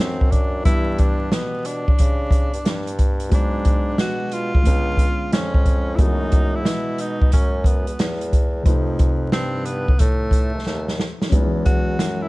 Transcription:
Already playing: E3 A3 C4 D4 F#4
0.00 F#2, snare
0.21 kick
0.31 D4, kick, closed hi-hat
0.62 G2 E3 G3 B3 E4, kick, closed hi-hat
0.67 G4 D5
0.98 D4, kick, closed hi-hat
1.32 B2 B3, snare, closed hi-hat
1.65 D4, closed hi-hat
1.88 C#3, kick
1.99 C#3, kick, closed hi-hat
2.31 kick, closed hi-hat
2.54 G2, closed hi-hat
2.65 G2, snare, closed hi-hat
2.87 closed hi-hat
2.99 kick, closed hi-hat
3.20 closed hi-hat
3.29 G#2 F#3 G#3 B3, kick, closed hi-hat
3.33 D4 G#4
3.65 kick, closed hi-hat
3.98 B2 F#4, snare, closed hi-hat
4.32 F4, closed hi-hat
4.55 C#2, kick
4.62 D3 G#3 B3, closed hi-hat
4.66 C#2 C#4 F4, kick
4.97 kick, closed hi-hat
5.32 F2 C#4, snare, closed hi-hat
5.54 kick
5.66 kick, closed hi-hat
5.96 F#2 E3 G#3 A3 E4, kick, closed hi-hat
6.00 B3 D#4 F#4
6.32 kick, closed hi-hat
6.55 E4
6.65 B2, snare, closed hi-hat
6.98 D#4, closed hi-hat
7.22 kick
7.32 F#2 C#4, kick, closed hi-hat
7.64 B3, kick, closed hi-hat
7.87 E2, closed hi-hat
7.99 E2, snare, closed hi-hat
8.21 closed hi-hat
8.33 kick, closed hi-hat
8.63 F2 C3 F3 A3, kick, closed hi-hat
8.67 D#4 B4
8.99 kick, closed hi-hat
9.32 G2 C4, snare, closed hi-hat
9.66 B3, closed hi-hat
9.88 A2, kick
9.99 A2 A3, kick, closed hi-hat
10.31 kick, closed hi-hat
10.54 D#2
10.66 D#2, snare
10.88 snare
11.00 snare
11.22 snare
11.29 E2 F#3 G#3 C#4, kick, closed hi-hat
11.33 B3 D#4
11.42 E3
11.66 F#4, kick, closed hi-hat
11.99 F#2, snare, closed hi-hat
12.22 E4

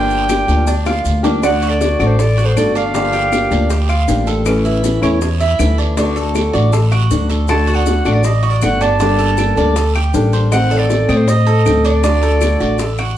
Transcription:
Already playing: G1 D3 F3 A#3 D4 G4 D5 G5
0.10 high bongo, maracas
0.29 F3 A#3 D4 G4, high bongo, short guiro, claves, maracas
0.48 D2 F3 A#3 D4 G4, short guiro, maracas
0.67 D4, muted nylon-string guitar stroke, high bongo, long guiro, maracas
0.86 A#3 D4 F4 G4, high bongo, claves, maracas
1.05 D2, short guiro, maracas
1.23 F3 A#3 D4 G4, low bongo, short guiro, maracas
1.42 D3 A3 D4 F#4 D5 F#5, high bongo, long guiro, claves, maracas
1.62 F#4, high bongo, maracas
1.69 A4 D5
1.80 D3 A3 D4 F#4, high bongo, short guiro, maracas
1.99 A1 A3 D4 F#4 D5, short guiro, claves, maracas
2.06 A4 C5
2.19 A4 D5, muted nylon-string guitar stroke, high bongo, long guiro, maracas
2.38 F#4, high bongo, maracas
2.44 A4 C5
2.56 G1 D3 A3 D4 F#4 A4 D5, high bongo, low bongo, short guiro, claves, maracas
2.75 D4 D5 F5, high bongo, short guiro, maracas
2.94 D3 F3 A#3 D4 G4, high bongo, long guiro, maracas
3.13 G4, high bongo, maracas
3.32 F3 A#3 D4 G4, high bongo, short guiro, claves, maracas
3.51 D2 F3 A#3 D4 G4 D5, short guiro, maracas
3.70 G4, muted nylon-string guitar stroke, high bongo, long guiro, maracas
3.89 F4, high bongo, claves, maracas
4.08 A1 F3 A#3 D4 G4, high bongo, low bongo, short guiro, maracas
4.27 A4, high bongo, short guiro, maracas
4.45 E3 A3 C#4 E4, high bongo, long guiro, claves, maracas
4.65 E4, high bongo, maracas
4.83 E3 A3 C#4 E4, high bongo, short guiro, maracas
5.02 E2 A3 C#4 E4 C#5, short guiro, claves, maracas
5.21 muted nylon-string guitar stroke, high bongo, long guiro, maracas
5.40 E4, high bongo, maracas
5.59 D2 E3 A3 C#4 E4, high bongo, low bongo, short guiro, claves, maracas
5.78 D4, high bongo, short guiro, maracas
5.97 D3 A3 D4 F#4, high bongo, long guiro, maracas
6.16 A4, high bongo, maracas
6.35 D3 A3 D4 F#4, high bongo, short guiro, claves, maracas
6.53 A1 A3 D4 F#4 D5, short guiro, maracas
6.73 A4, muted nylon-string guitar stroke, high bongo, long guiro, maracas
6.92 F#4, high bongo, claves, maracas
7.10 D2 D3 A3 D4 F#4, high bongo, low bongo, short guiro, maracas
7.29 A4, high bongo, short guiro, maracas
7.48 D3 A3 D4 F#4 F#5 A5, high bongo, long guiro, claves, maracas
7.67 F#4, high bongo, maracas
7.74 D5 F#5
7.86 D3 A3 D4 F#4, high bongo, short guiro, maracas
8.05 A1 A3 D4 F#4 D5, short guiro, claves, maracas
8.12 A#4 D5
8.24 A4 D#5, muted nylon-string guitar stroke, high bongo, long guiro, maracas
8.43 F#4, high bongo, maracas
8.50 A#4 D5
8.61 G1 D3 A3 D4 F#4 D5 F#5, high bongo, low bongo, short guiro, claves, maracas
8.81 D4 D5 A5, high bongo, short guiro, maracas
9.00 D3 G3 A#3 D4 A4, high bongo, long guiro, maracas
9.19 A4, high bongo, maracas
9.38 G3 A#3 D4 A4, high bongo, short guiro, claves, maracas
9.57 D2 G3 A#3 D4 A4 D5, short guiro, maracas
9.76 A4, high bongo, long guiro, maracas
9.95 G4, high bongo, claves, maracas
10.14 A1 G3 A#3 D4 A4, high bongo, low bongo, short guiro, maracas
10.33 C5, high bongo, short guiro, maracas
10.51 D#3 A3 C4 D#5 F#5, high bongo, long guiro, claves, maracas
10.71 A4, high bongo, maracas
10.78 A4 D5
10.90 D#3 A3 C4, high bongo, short guiro, maracas
11.08 A2 A3 C4 D#5, short guiro, claves, maracas
11.15 A4 C5
11.28 C5 D#5, muted nylon-string guitar stroke, high bongo, long guiro, maracas
11.47 A4, high bongo, maracas
11.66 D2 A3 C4, high bongo, low bongo, short guiro, claves, maracas
11.85 D4 A4 D5, high bongo, short guiro, maracas
12.03 D3 A3 D4 F#4, high bongo, long guiro, maracas
12.22 A4, high bongo, maracas
12.41 D3 A3 D4 F#4, high bongo, short guiro, claves, maracas
12.60 A1 A3 D4 F#4 D5, short guiro, maracas
12.79 A4, muted nylon-string guitar stroke, high bongo, long guiro, maracas
12.98 F#4, high bongo, claves, maracas

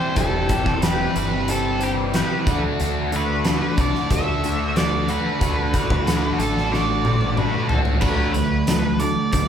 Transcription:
Already playing: E3 G3 C4 D4 E4 G4 C5
0.16 E1 E3 G3 C4 D4 E4 G4 A4 C5, kick, closed hi-hat
0.49 G1 E3 G3 C4 G4, kick, closed hi-hat
0.66 E1, kick
0.82 E3 G3 C4 D4 E4 G4 B4, snare, closed hi-hat
1.16 G1 E3 G3 C4 E4 G4 B4, closed hi-hat
1.48 E3 G3 C4 D4 E4 G4 A4 C5, closed hi-hat
1.80 E3 G3 C4 D4 E4 G4 C5, closed hi-hat
2.14 E3 G3 C4 D4 E4 G4 B4, snare, closed hi-hat
2.47 D2 D3 A3 D4 F#4 A4, kick, closed hi-hat
2.80 D2 D3 A3 D4 F#4, closed hi-hat
3.12 D3 A3 D4 F#4, closed hi-hat
3.16 B4
3.45 D3 A3 D4 F#4 A4, snare, closed hi-hat
3.77 C2 D3 A3 D4 F#4 A4 D5, kick, closed hi-hat
3.95 snare
4.10 D2 D3 A3 D4 F#4 A4 E5, kick, closed hi-hat
4.43 D3 A3 D4 F#4 A4, closed hi-hat
4.76 D3 A3 D4 F#4 A4 D5, snare, closed hi-hat
5.08 D3 A3 D4 F#4 B4, closed hi-hat
5.41 D2 D3 A3 D4 F#4 A4, kick, closed hi-hat
5.74 A1 D3 A3 D4 F#4, kick, closed hi-hat
5.90 D2, kick
6.07 D3 A3 D4 F#4 A4, snare, closed hi-hat
6.33 F#4
6.38 A1 D3 A3 D4 F#4 A4, closed hi-hat
6.57 snare
6.72 D3 A3 D4 F#4 A4 D5, snare
7.05 D3 A3 D4 F#4 A4, high tom
7.21 high tom
7.37 D3 A3 D4 F#4 A4 B4, mid tom
7.69 D2 D3 A3 D4 F#4 A4, floor tom
7.85 floor tom
8.01 D2 D3 F#3 A3 D4 F#4 A4 B4, kick, crash
8.33 D3 F#3 A3 B4, closed hi-hat
8.67 D3 F#3 A3 D4 F#4 A4, snare, closed hi-hat
9.00 D3 F#3 A3 D4 F#4 A4 D5, closed hi-hat
9.32 D2 D3 F#3 A3 D4 F#4 A4 D5, kick, closed hi-hat

